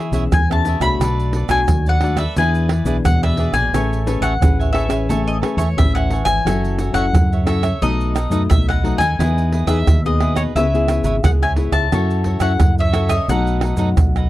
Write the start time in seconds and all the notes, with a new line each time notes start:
Already playing: E3 E4 E5
0.00 G#4 C#5 E5
0.12 B1 B3 C#4 E4 G#4 C#5 E5, pandeiro, shaker, surdo
0.32 E2 B2 G#5, pandeiro, tamborim, shaker, surdo
0.50 B3 C#4 G#4 C#5 E5 A5, pandeiro, tamborim, shaker
0.65 E4 G#4 C#5 E5, pandeiro, shaker
0.80 C2 A3 D4 F#4 G#4 C#5 E5 B5, pandeiro, tamborim, shaker, surdo
1.00 B1 B2 D4 A4 B4, pandeiro, tamborim, shaker, surdo
1.04 D5
1.20 pandeiro, shaker
1.33 D4 A4 B4 D5, pandeiro
1.49 B1 A3 D4 F#4 A4 B4 D5 G#5, pandeiro, tamborim, shaker, surdo
1.68 D#2 F#2, pandeiro, tamborim, shaker, surdo
1.86 A4 B4 D5 F#5, pandeiro, shaker
2.01 A3 D4 F#4 A4 B4 D5, pandeiro, tamborim
2.17 A4 B4 D5 E5, pandeiro, tamborim, shaker, surdo
2.36 E2 E3 B3 D4 E4 G#4 B4 D5 G#5, pandeiro, shaker, surdo
2.55 pandeiro, shaker
2.69 E4 G#4 B4 D5, pandeiro, tamborim
2.84 B1 B3 D4 E4 G#4 B4 D5, pandeiro, shaker, surdo
3.04 E2 B2 F#5, pandeiro, tamborim, shaker, surdo
3.23 G#4 B4 D5 E5, pandeiro, tamborim, shaker
3.37 B3 D4 E4 G#4 B4 D5, pandeiro
3.52 A#1 B4 D5 G#5, pandeiro, tamborim, shaker, surdo
3.57 G#4
3.73 A1 A3 C#4 G#4 A4 B4 C#5 E5, pandeiro, tamborim, shaker, surdo
3.77 G#5
3.93 pandeiro, shaker
4.07 C#4 G#4 A4 B4 C#5 E5 G#5, pandeiro, shaker
4.21 A1 A4 C#5 E5 F#5 G#5, pandeiro, tamborim, shaker, surdo
4.40 A1 E3 C#4 G#4 B4, pandeiro, tamborim, shaker, surdo
4.59 C#5 E5 G#5, pandeiro, shaker
4.73 C#4 G#4 A4 B4 C#5 E5 G#5, pandeiro, tamborim
4.89 C#4 G#4 B4 C#5 E5 G#5, pandeiro, tamborim, shaker, surdo
5.09 A3 A4 C#5 E5 G#5, pandeiro, shaker, surdo
5.27 D#5, pandeiro, shaker
5.42 C#4 G#4 A4 B4 C#5 E5 G#5, pandeiro, tamborim
5.57 E2 A4 C#5 E5 G#5, pandeiro, shaker, surdo
5.77 A1 E3 C#4 G#4 B4 E5, pandeiro, tamborim, shaker, surdo
5.95 C#5 E5 F#5 G#5, pandeiro, tamborim, shaker
6.10 A4 C#5 E5 G#5, pandeiro
6.25 G#1 C#5 E5 G#5, pandeiro, tamborim, shaker, surdo
6.45 F#1 F#3 C#4 E4 F#4 A4 C#5 E5, pandeiro, tamborim, shaker, surdo
6.65 pandeiro, shaker
6.79 F#4 A4 C#5 E5, pandeiro, shaker
6.93 F#1 C#4 E4 F#4 A4 C#5 E5 F#5, pandeiro, tamborim, shaker, surdo
7.13 F#2 C#3, pandeiro, tamborim, shaker, surdo
7.32 A4 C#5 E5, pandeiro, shaker
7.45 C#4 E4 F#4 A4 C#5 E5, pandeiro, tamborim, shaker
7.63 A4 C#5 E5, pandeiro, tamborim, shaker, surdo
7.82 B1 B2 F#3 A3 D#4 A4 B4 D#5, pandeiro, shaker, surdo
8.01 pandeiro, shaker
8.15 D#4 A4 B4 D#5, pandeiro, tamborim, shaker
8.30 F#2 F#3 A3 D#4 A4 B4 D#5, pandeiro, shaker, surdo
8.50 B1 F#2 E5, pandeiro, tamborim, shaker, surdo
8.69 A4 B4 D#5 F#5, pandeiro, tamborim, shaker
8.83 F#3 A3 D#4 A4 B4 D#5, pandeiro
8.98 D#2 A4 B4 D#5 G#5, pandeiro, tamborim, shaker, surdo
9.19 E2 E3 B3 D#4 E4 G#4 B4 D#5, pandeiro, tamborim, shaker, surdo
9.38 pandeiro, shaker
9.52 E4 G#4 B4 D#5, pandeiro
9.67 E2 B3 D#4 E4 G#4 B4 D#5 E5, pandeiro, tamborim, shaker, surdo
9.87 D#2 B2, pandeiro, tamborim, shaker, surdo
10.06 B3 D#4 G#4 B4 D#5, pandeiro, shaker
10.20 E4 G#4 B4 D#5, pandeiro, tamborim
10.35 G#4 B4 C#5 D#5, pandeiro, tamborim, shaker, surdo
10.55 C#2 C#3 B3 E4 G#4 B4 C#5 E5, pandeiro, shaker, surdo
10.74 B3 E4 G#4, pandeiro, shaker
10.88 E4 B4 C#5 E5, pandeiro, tamborim, shaker
11.03 G#1 E4 B4 C#5 E5, pandeiro, shaker, surdo
11.23 C#2 G#2 B3 E4 G#4 F#5, pandeiro, tamborim, shaker, surdo
11.42 B4 C#5 E5 G#5, pandeiro, tamborim, shaker
11.56 B3 E4 G#4 B4 C#5 E5, pandeiro
11.72 C#2 B4 C#5 E5 A5, pandeiro, tamborim, shaker, surdo
11.92 F#2 F#3 C#4 E4 F#4 A4 C#5 E5, pandeiro, tamborim, shaker, surdo
12.11 pandeiro, shaker
12.24 F#4 A4 C#5 E5, pandeiro, surdo
12.40 F#2 C#4 E4 F#4 A4 C#5 E5 F#5, pandeiro, tamborim, shaker, surdo
12.60 F#2 C#3, pandeiro, tamborim, shaker, surdo
12.78 A4 C#5 E5, pandeiro, shaker
12.93 C#4 E4 F#4 A4 C#5 E5, pandeiro, tamborim, shaker
13.09 A4 C#5 D#5 E5, pandeiro, tamborim, shaker, surdo
13.28 B1 B2 F#3 A3 D#4 A4 B4 F#5, pandeiro, shaker, surdo
13.32 D#5
13.47 pandeiro, shaker
13.61 D#4 A4 B4, pandeiro, tamborim
13.65 D#5
13.77 F#2 F#3 A3 D#4 A4 B4 D#5, pandeiro, shaker, surdo
13.97 B1, pandeiro, tamborim, shaker, surdo
14.16 A4 B4 D#5, pandeiro, tamborim, shaker